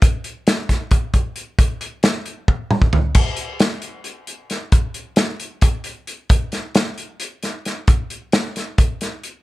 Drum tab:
CC |--------------|--------------|x-------------|--------------|
HH |x-x-x-x-x-x-x-|x-x-x-x-------|--x-x-x-x-x-x-|x-x-x-x-x-x-x-|
SD |----o-o-------|----o---------|----o-------o-|----o---------|
T2 |--------------|----------o---|--------------|--------------|
FT |--------------|------------o-|--------------|--------------|
BD |o-----o-o-o---|o-------o--o--|o-------------|o-------o-----|

CC |--------------|--------------|
HH |x-x-x-x-x-x-x-|x-x-x-x-x-x-x-|
SD |--o-o-----o-o-|----o-o---o---|
T2 |--------------|--------------|
FT |--------------|--------------|
BD |o-------------|o-------o-----|